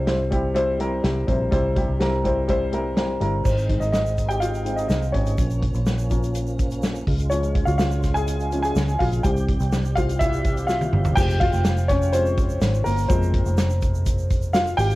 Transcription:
Already playing: fingered electric bass C2, upright piano C3 G3 C4 E4 C5
0.07 upright piano G3 C4 E4 C5, snare, closed hi-hat
0.31 upright piano G3 C4 E4 G4, kick, closed hi-hat
0.54 upright piano G3 C4 E4 C5, closed hi-hat
0.79 upright piano G3 C4 E4 A#4, closed hi-hat
1.03 fingered electric bass C2, upright piano G3 C4 E4 G4, snare, closed hi-hat
1.27 fingered electric bass A#1, upright piano C3 G3 C4 E4 C5, kick, closed hi-hat
1.51 fingered electric bass C2, upright piano G3 C4 E4 C5, kick, closed hi-hat
1.75 upright piano G3 C4 E4 G4, kick, closed hi-hat
1.88 fingered electric bass C2
1.99 upright piano G3 C4 E4 A#4, snare, closed hi-hat
2.24 upright piano G3 C4 E4 C5, kick, closed hi-hat
2.48 upright piano G3 C4 E4 C5, kick, closed hi-hat
2.72 upright piano G3 C4 E4 A#4, closed hi-hat
2.96 upright piano G3 C4 E4 A#4, snare, closed hi-hat
3.20 fingered electric bass G1, upright piano G3 C4 E4 A#4, closed hi-hat
3.44 fingered electric bass G#1, tonewheel organ G#3 C4 D#4, upright piano C4 C5, kick, crash, shaker
3.57 closed hi-hat, shaker
3.69 upright piano D#3 G#3 C4, kick, closed hi-hat
3.80 fingered electric bass G#1, upright piano D#4 D#5, closed hi-hat, shaker
3.92 upright piano D#4 D#5, snare, shaker
4.06 shaker
4.18 kick, closed hi-hat, shaker
4.29 upright piano G4 G5, closed hi-hat, shaker
4.40 upright piano F4 F5, closed hi-hat, shaker
4.54 closed hi-hat, shaker
4.65 upright piano D#3 G#3 C4, closed hi-hat, shaker
4.76 upright piano D#4 D#5, closed hi-hat, shaker
4.88 fingered electric bass C2, upright piano D#4 D#5, snare, shaker
5.02 shaker
5.12 fingered electric bass G#1, upright piano C#4 C#5, kick, closed hi-hat
5.26 closed hi-hat, shaker
5.38 fingered electric bass A#1, tonewheel organ F3 A#3 C#4, kick, closed hi-hat, shaker
5.50 closed hi-hat, shaker
5.62 kick, closed hi-hat
5.74 fingered electric bass A#1, closed hi-hat, shaker
5.86 snare, shaker
5.98 shaker
6.10 upright piano F3 A#3 C#4, kick, closed hi-hat, shaker
6.23 closed hi-hat, shaker
6.35 closed hi-hat, shaker
6.47 shaker
6.59 kick, closed hi-hat, shaker
6.71 closed hi-hat, shaker
6.82 snare, shaker
6.95 shaker
7.07 fingered electric bass C#2, tonewheel organ C#3 G#3 F4, kick, open hi-hat
7.19 closed hi-hat, shaker
7.30 upright piano F3 G#3 C#4 C#5, closed hi-hat, shaker
7.43 closed hi-hat, shaker
7.55 kick, closed hi-hat
7.65 fingered electric bass C#2, upright piano F4 F5, closed hi-hat, shaker
7.78 upright piano F4 F5, snare, shaker
7.91 shaker
8.03 kick, snare, closed hi-hat, shaker
8.14 upright piano G#4 G#5, closed hi-hat, shaker
8.27 closed hi-hat, shaker
8.40 closed hi-hat, shaker
8.52 upright piano F3 G#3 C#4, closed hi-hat, shaker
8.63 upright piano G#4 G#5, closed hi-hat, shaker
8.76 fingered electric bass C#2, snare, shaker
8.88 shaker
8.99 fingered electric bass A#1, upright piano F4 F5, kick, open hi-hat
9.12 closed hi-hat, shaker
9.23 fingered electric bass C2, tonewheel organ C3 G3 G4, upright piano E3 G3 C4 G4 G5, kick, closed hi-hat, shaker
9.37 closed hi-hat, shaker
9.48 kick, closed hi-hat
9.60 fingered electric bass C2, closed hi-hat, shaker
9.72 snare, shaker
9.85 shaker
9.95 upright piano E3 G3 C4 F4 F5, kick, closed hi-hat, shaker
10.09 closed hi-hat, shaker
10.19 upright piano E4 E5, kick, closed hi-hat, shaker
10.33 shaker
10.44 kick, closed hi-hat, shaker
10.57 closed hi-hat, shaker
10.67 upright piano F4 F5, snare, shaker
10.81 high tom, shaker
10.93 fingered electric bass G1, mid tom
11.05 floor tom, shaker
11.16 fingered electric bass F1, upright piano F3 G#3 C4 G4 G5, kick, crash, shaker
11.30 shaker
11.40 upright piano F4 F5, kick, closed hi-hat
11.53 fingered electric bass F1, shaker
11.65 snare, closed hi-hat, shaker
11.77 shaker
11.88 upright piano C#4 C#5, kick, snare, closed hi-hat, shaker
12.02 shaker
12.12 upright piano F3 G#3 C4 C5, closed hi-hat, shaker
12.26 shaker
12.37 kick, closed hi-hat, shaker
12.49 shaker
12.61 fingered electric bass G#1, snare, closed hi-hat, shaker
12.74 shaker
12.84 fingered electric bass G1, upright piano A#3 A#4, open hi-hat, shaker
12.98 shaker
13.08 fingered electric bass F1, upright piano F3 G#3 C4 C5, kick, closed hi-hat, shaker
13.23 shaker
13.34 kick, closed hi-hat
13.46 fingered electric bass F1, shaker
13.58 snare, closed hi-hat, shaker
13.70 shaker
13.82 kick, closed hi-hat, shaker
13.94 shaker
14.06 kick, closed hi-hat, shaker
14.18 shaker
14.30 kick, closed hi-hat, shaker
14.42 shaker
14.53 upright piano F4 F5, snare, closed hi-hat, shaker
14.67 shaker
14.77 fingered electric bass G#1, upright piano G4 G5, open hi-hat, shaker
14.90 shaker

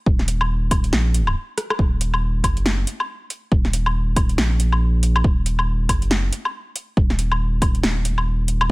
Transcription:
0.06 sub bass D#1, kick
0.19 snare
0.28 closed hi-hat
0.41 low woodblock
0.71 kick, closed hi-hat, low woodblock
0.84 closed hi-hat
0.93 sub bass A#1, snare
1.14 closed hi-hat
1.27 low woodblock
1.58 cross-stick, closed hi-hat
1.70 cross-stick, low woodblock
1.79 sub bass D#1, kick
2.01 closed hi-hat
2.14 low woodblock
2.44 sub bass F#1, kick, closed hi-hat, low woodblock
2.57 closed hi-hat
2.66 snare
2.87 closed hi-hat
3.00 low woodblock
3.30 closed hi-hat
3.52 sub bass D#1, kick
3.65 snare
3.73 closed hi-hat
3.86 low woodblock
4.16 kick, closed hi-hat, low woodblock
4.29 closed hi-hat
4.38 sub bass A#1, snare
4.60 closed hi-hat
4.72 low woodblock
5.03 closed hi-hat
5.16 low woodblock
5.24 sub bass D#1, kick
5.46 closed hi-hat
5.59 low woodblock
5.89 sub bass F#1, kick, closed hi-hat, low woodblock
6.02 closed hi-hat
6.11 snare
6.33 closed hi-hat
6.45 low woodblock
6.76 closed hi-hat
6.97 sub bass D#1, kick
7.10 snare
7.19 closed hi-hat
7.32 low woodblock
7.62 kick, closed hi-hat, low woodblock
7.75 closed hi-hat
7.83 sub bass D#1, snare
8.05 closed hi-hat
8.18 low woodblock
8.48 closed hi-hat
8.61 low woodblock

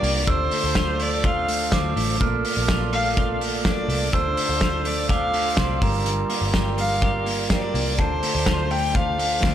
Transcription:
Already playing: clean electric guitar G2 D4 G4, transistor combo organ F4 G4 A#4 D5, violin D5, glockenspiel D6
0.03 picked electric bass C2, clean electric guitar A#3, open hi-hat
0.26 picked electric bass D2, clean electric guitar D3, transistor combo organ F4 A4 C5, violin C5, glockenspiel E6, kick, closed hi-hat
0.30 transistor combo organ D5
0.51 clean electric guitar A3, open hi-hat
0.64 picked electric bass D2
0.75 clean electric guitar F4, kick, snare, closed hi-hat
1.00 clean electric guitar A3, violin D5, open hi-hat
1.24 clean electric guitar F4, violin F5, kick, closed hi-hat
1.48 clean electric guitar A3, open hi-hat
1.72 picked electric bass D2, clean electric guitar C4, glockenspiel D6, kick, snare, closed hi-hat
1.96 picked electric bass A1, clean electric guitar A3, open hi-hat
2.19 picked electric bass A#1, clean electric guitar A#2, transistor combo organ A#3 F4 A4 D5, glockenspiel F6, kick, closed hi-hat
2.45 clean electric guitar A3, open hi-hat
2.57 picked electric bass A#1
2.68 clean electric guitar F4, kick, snare, closed hi-hat
2.93 clean electric guitar A3, violin F5, open hi-hat
3.17 clean electric guitar F4, kick, closed hi-hat
3.41 clean electric guitar A3, open hi-hat
3.65 clean electric guitar D4, violin D5, kick, snare, closed hi-hat
3.88 picked electric bass C2, clean electric guitar A3, open hi-hat
4.12 picked electric bass D2, clean electric guitar D3, transistor combo organ F4 A4 C5 D5, violin C5, glockenspiel E6, kick, closed hi-hat
4.37 clean electric guitar A3, open hi-hat
4.49 picked electric bass D2
4.61 clean electric guitar F4, kick, snare, closed hi-hat
4.85 clean electric guitar A3, violin D5, open hi-hat
5.09 clean electric guitar F4, violin F5, glockenspiel D6, kick, closed hi-hat
5.34 clean electric guitar A3, open hi-hat
5.57 picked electric bass C2, clean electric guitar C4, glockenspiel C6, kick, snare, closed hi-hat
5.80 picked electric bass G1, clean electric guitar G2, transistor combo organ F4 G4 A#4 D5, glockenspiel A#5, kick, open hi-hat
6.06 clean electric guitar G2, closed hi-hat
6.30 clean electric guitar A#3, open hi-hat
6.42 picked electric bass G1
6.54 clean electric guitar G4, kick, snare, closed hi-hat
6.78 clean electric guitar A#3, violin F5, open hi-hat
7.02 clean electric guitar G4, kick, closed hi-hat
7.26 clean electric guitar A#3, open hi-hat
7.50 clean electric guitar C4, violin D5, kick, snare, closed hi-hat
7.62 clean electric guitar D4
7.74 picked electric bass C2, clean electric guitar A#3, open hi-hat
7.97 picked electric bass D2, clean electric guitar D3, transistor combo organ F4 A4 C5, violin C5, glockenspiel A5, kick, closed hi-hat
8.01 transistor combo organ D5
8.23 clean electric guitar A3, open hi-hat
8.35 picked electric bass D2
8.46 clean electric guitar F4, kick, snare, closed hi-hat
8.71 clean electric guitar A3, violin G5, open hi-hat
8.95 clean electric guitar F4, violin F5, kick, closed hi-hat
9.19 clean electric guitar A3, open hi-hat
9.43 picked electric bass D2, clean electric guitar C4, kick, snare

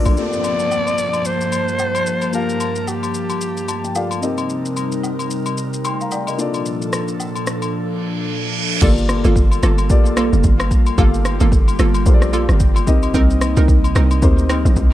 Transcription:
Already playing: grand piano A#3 D4 F4 A4 D5, analog synth pad A#3 D4 A4
0.05 log drum bass A#1, high agogo, shaker
0.15 analog synth pad G2 F3 A#3 A5, grand piano A3 F4 G4 A4 D5, alto saxophone D5, downlifter, shaker
0.22 grand piano A#3
0.33 shaker
0.44 high agogo, shaker
0.59 shaker
0.71 low woodblock, shaker
0.87 high agogo, shaker
0.98 shaker
1.13 high agogo, shaker
1.25 alto saxophone C5, shaker
1.41 shaker
1.52 high agogo, shaker
1.68 shaker
1.79 low woodblock, shaker
1.95 high agogo, shaker
2.06 shaker
2.22 high agogo, shaker
2.31 grand piano A#3 F4 G4 F5 A5, alto saxophone A#4, shaker
2.49 shaker
2.60 high agogo, shaker
2.76 shaker
2.87 alto saxophone G4, low woodblock, shaker
3.03 high agogo, shaker
3.14 shaker
3.30 high agogo, shaker
3.41 shaker
3.57 shaker
3.68 grand piano A5, high agogo, shaker
3.84 grand piano G5, shaker
3.95 grand piano A#3 F4 G4 A4 D5 F5, low woodblock, shaker
4.11 high agogo, shaker
4.21 analog synth pad C3 G3 D#4 A#4, grand piano C4 D#4 G4 A#4 D#5, shaker
4.38 high agogo, shaker
4.50 shaker
4.66 shaker
4.77 high agogo, shaker
4.92 shaker
5.03 low woodblock, shaker
5.19 high agogo, shaker
5.31 shaker
5.46 high agogo, shaker
5.58 shaker
5.74 shaker
5.85 grand piano G5 C6, high agogo, shaker
6.00 grand piano F5 A#5, shaker
6.11 grand piano D5 G5, low woodblock, shaker
6.27 grand piano A#4 D#5, high agogo, shaker
6.37 analog synth pad A#2 F3 D4 A4, grand piano A#3 D4 F4 A4 D5, shaker
6.54 high agogo, shaker
6.66 shaker
6.82 shaker
6.93 cross-stick, high agogo, shaker
7.08 shaker
7.20 low woodblock, shaker
7.35 high agogo, shaker
7.47 cross-stick, shaker
7.62 high agogo, shaker
7.74 reverse cymbal
8.81 log drum bass G1, analog synth pad G3 A#3 F4 A4, grand piano A3 F4 G4 A4 D5, synth pluck A#3 F4 A4, kick, crash, shaker
8.88 grand piano A#3
8.98 shaker
9.09 cross-stick, high agogo, shaker
9.24 log drum bass G1, synth pluck A#3 F4 A4, shaker
9.36 kick, shaker
9.51 high agogo, shaker
9.63 log drum bass G1, synth pluck A#3 F4 A4, cross-stick, shaker
9.78 high agogo, shaker
9.89 log drum bass A#1, grand piano A#3 F4 G4 A4 D5, kick, shaker
10.06 shaker
10.17 synth pluck A#3 F4 A4, cross-stick, high agogo, shaker
10.33 log drum bass F1, shaker
10.44 log drum bass G1, kick, shaker
10.60 cross-stick, high agogo, shaker
10.71 log drum bass A#1, kick, shaker
10.86 high agogo, shaker
10.97 log drum bass G1, grand piano A#3 F4 G4 A4 F5, synth pluck A#3 F4 A4, analog synth pad G4, kick, shaker
11.14 shaker
11.25 cross-stick, high agogo, shaker
11.40 log drum bass G1, synth pluck A#3 F4 A4, shaker
11.52 kick, shaker
11.68 high agogo, shaker
11.79 log drum bass G1, synth pluck A#3 F4 A4, cross-stick, shaker
11.94 high agogo, shaker
12.05 log drum bass A#1, grand piano A#3 F4 G4 A4 C5, kick, shaker
12.14 grand piano D5
12.22 cross-stick, shaker
12.33 synth pluck A#3 F4 A4, high agogo, shaker
12.49 log drum bass G1, cross-stick, shaker
12.60 kick, shaker
12.76 high agogo, shaker
12.86 log drum bass C2, analog synth pad C3 A#3 D#4, grand piano C4 D#4 G4 A#4 D#5, kick, shaker
13.03 high agogo, shaker
13.14 log drum bass C2, synth pluck C4 D#4 A#4, kick, shaker
13.30 shaker
13.41 cross-stick, high agogo, shaker
13.57 log drum bass C2, synth pluck C4 D#4 A#4, shaker
13.68 kick, shaker
13.84 high agogo, shaker
13.95 log drum bass C2, synth pluck C4 D#4 A#4, cross-stick, shaker
14.11 high agogo, shaker
14.22 log drum bass D2, grand piano C4 D#4 G4 A#4 C5, kick, shaker
14.38 shaker
14.49 synth pluck C4 D#4 A#4, cross-stick, high agogo, shaker
14.65 log drum bass A#1, shaker
14.76 log drum bass C2, kick, shaker

